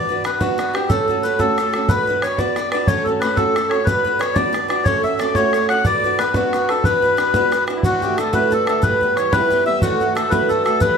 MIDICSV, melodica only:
0, 0, Header, 1, 2, 480
1, 0, Start_track
1, 0, Key_signature, 2, "minor"
1, 0, Tempo, 330033
1, 1316, Time_signature, 6, 3, 24, 8
1, 11400, Key_signature, 2, "major"
1, 15963, End_track
2, 0, Start_track
2, 0, Title_t, "Melodica"
2, 0, Program_c, 0, 22
2, 0, Note_on_c, 0, 74, 101
2, 336, Note_off_c, 0, 74, 0
2, 371, Note_on_c, 0, 71, 83
2, 584, Note_on_c, 0, 66, 86
2, 605, Note_off_c, 0, 71, 0
2, 1074, Note_on_c, 0, 67, 87
2, 1098, Note_off_c, 0, 66, 0
2, 1291, Note_on_c, 0, 69, 98
2, 1316, Note_off_c, 0, 67, 0
2, 1787, Note_on_c, 0, 71, 86
2, 1812, Note_off_c, 0, 69, 0
2, 2021, Note_on_c, 0, 69, 103
2, 2032, Note_off_c, 0, 71, 0
2, 2742, Note_on_c, 0, 71, 98
2, 2770, Note_off_c, 0, 69, 0
2, 3229, Note_on_c, 0, 73, 91
2, 3256, Note_off_c, 0, 71, 0
2, 3463, Note_on_c, 0, 74, 99
2, 3473, Note_off_c, 0, 73, 0
2, 3920, Note_off_c, 0, 74, 0
2, 3942, Note_on_c, 0, 74, 100
2, 4172, Note_on_c, 0, 73, 110
2, 4189, Note_off_c, 0, 74, 0
2, 4425, Note_on_c, 0, 69, 88
2, 4458, Note_off_c, 0, 73, 0
2, 4535, Note_off_c, 0, 69, 0
2, 4650, Note_on_c, 0, 71, 85
2, 4885, Note_on_c, 0, 69, 107
2, 4903, Note_off_c, 0, 71, 0
2, 5370, Note_on_c, 0, 73, 88
2, 5408, Note_off_c, 0, 69, 0
2, 5593, Note_on_c, 0, 71, 99
2, 5623, Note_off_c, 0, 73, 0
2, 6102, Note_on_c, 0, 73, 84
2, 6123, Note_off_c, 0, 71, 0
2, 6313, Note_on_c, 0, 74, 105
2, 6349, Note_off_c, 0, 73, 0
2, 6791, Note_off_c, 0, 74, 0
2, 6814, Note_on_c, 0, 74, 103
2, 7038, Note_on_c, 0, 73, 111
2, 7065, Note_off_c, 0, 74, 0
2, 7303, Note_off_c, 0, 73, 0
2, 7321, Note_on_c, 0, 76, 97
2, 7558, Note_on_c, 0, 74, 91
2, 7566, Note_off_c, 0, 76, 0
2, 7777, Note_on_c, 0, 73, 105
2, 7797, Note_off_c, 0, 74, 0
2, 8245, Note_off_c, 0, 73, 0
2, 8279, Note_on_c, 0, 78, 124
2, 8518, Note_off_c, 0, 78, 0
2, 8524, Note_on_c, 0, 74, 121
2, 8996, Note_on_c, 0, 71, 98
2, 9028, Note_off_c, 0, 74, 0
2, 9236, Note_on_c, 0, 66, 97
2, 9237, Note_off_c, 0, 71, 0
2, 9720, Note_on_c, 0, 69, 101
2, 9745, Note_off_c, 0, 66, 0
2, 9951, Note_on_c, 0, 71, 107
2, 9959, Note_off_c, 0, 69, 0
2, 11111, Note_off_c, 0, 71, 0
2, 11292, Note_on_c, 0, 64, 65
2, 11394, Note_off_c, 0, 64, 0
2, 11410, Note_on_c, 0, 66, 105
2, 11908, Note_on_c, 0, 69, 76
2, 11913, Note_off_c, 0, 66, 0
2, 12134, Note_off_c, 0, 69, 0
2, 12136, Note_on_c, 0, 71, 101
2, 12402, Note_off_c, 0, 71, 0
2, 12408, Note_on_c, 0, 69, 95
2, 12615, Note_off_c, 0, 69, 0
2, 12637, Note_on_c, 0, 69, 107
2, 12837, Note_off_c, 0, 69, 0
2, 12840, Note_on_c, 0, 71, 104
2, 13348, Note_off_c, 0, 71, 0
2, 13350, Note_on_c, 0, 73, 93
2, 13570, Note_on_c, 0, 71, 126
2, 13575, Note_off_c, 0, 73, 0
2, 14025, Note_off_c, 0, 71, 0
2, 14054, Note_on_c, 0, 76, 119
2, 14265, Note_off_c, 0, 76, 0
2, 14280, Note_on_c, 0, 66, 101
2, 14740, Note_off_c, 0, 66, 0
2, 14767, Note_on_c, 0, 69, 88
2, 14977, Note_on_c, 0, 71, 102
2, 15005, Note_off_c, 0, 69, 0
2, 15250, Note_on_c, 0, 69, 88
2, 15264, Note_off_c, 0, 71, 0
2, 15456, Note_off_c, 0, 69, 0
2, 15478, Note_on_c, 0, 69, 113
2, 15719, Note_on_c, 0, 71, 102
2, 15721, Note_off_c, 0, 69, 0
2, 15963, Note_off_c, 0, 71, 0
2, 15963, End_track
0, 0, End_of_file